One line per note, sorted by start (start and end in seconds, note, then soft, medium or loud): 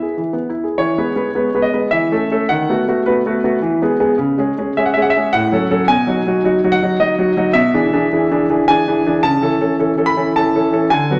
0.00 0.19 G#4 soft
0.00 0.14 E5 soft
0.18 0.33 E3 soft
0.33 0.49 B3 soft
0.50 0.65 E4 soft
0.64 0.78 G#4 soft
0.78 0.97 E3 medium
0.78 1.60 C#5 medium
0.98 1.11 G#3 soft
0.98 1.12 B3 soft
0.98 1.12 B4 soft
1.15 1.30 G#3 soft
1.15 1.30 B3 soft
1.15 1.30 B4 soft
1.35 1.49 G#3 soft
1.35 1.49 B3 soft
1.35 1.49 B4 soft
1.54 1.68 G#3 soft
1.54 1.68 B3 soft
1.54 1.69 B4 soft
1.62 1.89 D#5 medium
1.73 1.87 G#3 soft
1.73 1.88 B3 soft
1.73 1.87 B4 soft
1.91 2.11 E3 medium
1.91 2.49 E5 medium
2.12 2.26 A3 soft
2.12 2.26 C#4 soft
2.12 2.26 A4 soft
2.31 2.45 A3 soft
2.31 2.45 C#4 soft
2.31 2.45 A4 medium
2.49 2.69 D#3 medium
2.49 2.83 F#5 medium
2.69 2.83 A3 soft
2.69 2.83 B3 soft
2.69 2.84 F#4 soft
2.88 3.02 A3 soft
2.88 3.02 B3 soft
2.88 3.02 F#4 soft
3.06 3.21 A3 soft
3.06 3.21 B3 soft
3.06 3.21 F#4 soft
3.06 3.87 B4 medium
3.26 3.39 A3 soft
3.26 3.39 B3 soft
3.26 3.40 F#4 soft
3.44 3.58 A3 soft
3.44 3.58 B3 soft
3.44 3.58 F#4 soft
3.62 3.81 E3 medium
3.82 3.96 G#3 soft
3.82 3.96 B3 medium
3.82 3.96 G#4 medium
4.00 4.14 G#3 medium
4.00 4.14 B3 medium
4.00 4.14 G#4 medium
4.18 4.38 C#3 medium
4.38 4.52 G#3 medium
4.38 4.53 C#4 soft
4.38 4.53 G#4 medium
4.58 4.72 G#3 soft
4.58 4.72 C#4 soft
4.58 4.72 G#4 medium
4.77 4.91 G#3 soft
4.77 4.91 C#4 soft
4.77 4.92 G#4 medium
4.77 4.85 E5 medium
4.86 4.94 F#5 medium
4.94 5.10 G#3 soft
4.94 5.11 C#4 soft
4.94 5.11 G#4 soft
4.94 5.02 E5 medium
5.02 5.10 F#5 medium
5.10 5.32 E5 medium
5.16 5.30 G#3 medium
5.16 5.30 C#4 soft
5.16 5.30 G#4 medium
5.33 5.52 A2 medium
5.33 5.85 F#5 medium
5.52 5.66 F#3 medium
5.52 5.66 C#4 medium
5.52 5.67 A4 medium
5.71 5.84 F#3 medium
5.71 5.84 C#4 medium
5.71 5.85 A4 medium
5.88 6.07 B2 medium
5.88 6.68 G#5 medium
6.07 6.21 F#3 medium
6.07 6.21 D#4 soft
6.07 6.22 F#4 medium
6.27 6.40 F#3 soft
6.27 6.40 D#4 soft
6.27 6.41 F#4 medium
6.44 6.58 F#3 soft
6.44 6.59 D#4 soft
6.44 6.59 F#4 medium
6.64 6.77 F#3 soft
6.64 6.78 D#4 soft
6.64 6.77 F#4 medium
6.72 7.00 F#5 medium
6.82 6.96 F#3 soft
6.82 6.96 D#4 medium
6.82 6.96 F#4 medium
7.00 7.14 F#3 soft
7.00 7.14 D#4 medium
7.00 7.14 F#4 medium
7.00 7.51 D#5 medium
7.19 7.32 F#3 medium
7.19 7.32 D#4 medium
7.19 7.33 F#4 medium
7.37 7.50 F#3 medium
7.37 7.51 D#4 medium
7.37 7.51 F#4 medium
7.53 7.73 B2 medium
7.53 8.67 E5 medium
7.74 7.88 E3 medium
7.74 7.88 D4 medium
7.74 7.88 G#4 medium
7.93 8.06 E3 soft
7.93 8.07 D4 medium
7.93 8.07 G#4 medium
8.13 8.26 E3 medium
8.13 8.26 D4 soft
8.13 8.26 G#4 soft
8.31 8.45 E3 soft
8.31 8.45 D4 soft
8.31 8.45 G#4 medium
8.50 8.63 E3 soft
8.50 8.63 D4 soft
8.50 8.64 G#4 medium
8.68 8.82 E3 soft
8.68 8.83 D4 medium
8.68 8.83 G#4 medium
8.68 9.20 G#5 medium
8.88 9.01 E3 medium
8.88 9.01 D4 medium
8.88 9.01 G#4 medium
9.06 9.20 E3 medium
9.06 9.20 D4 medium
9.06 9.20 G#4 medium
9.23 9.42 C#3 medium
9.23 9.73 A5 medium
9.42 9.55 E3 soft
9.42 9.56 C#4 soft
9.42 9.56 A4 medium
9.61 9.74 E3 soft
9.61 9.74 C#4 soft
9.61 9.75 A4 medium
9.79 9.93 E3 soft
9.79 9.93 C#4 soft
9.79 9.93 A4 soft
9.97 10.11 E3 soft
9.97 10.11 C#4 soft
9.97 10.12 A4 soft
10.06 10.32 B5 medium
10.16 10.30 E3 soft
10.16 10.31 C#4 soft
10.16 10.31 A4 soft
10.36 10.50 E3 soft
10.36 10.51 C#4 soft
10.36 10.50 A4 soft
10.36 10.92 A5 medium
10.55 10.68 E3 soft
10.55 10.69 C#4 soft
10.55 10.69 A4 medium
10.72 10.86 E3 soft
10.72 10.87 C#4 medium
10.72 10.87 A4 medium
10.90 11.10 D3 medium
10.90 11.20 G#5 medium
11.11 11.20 F#3 soft
11.11 11.20 B3 soft
11.11 11.20 F#4 soft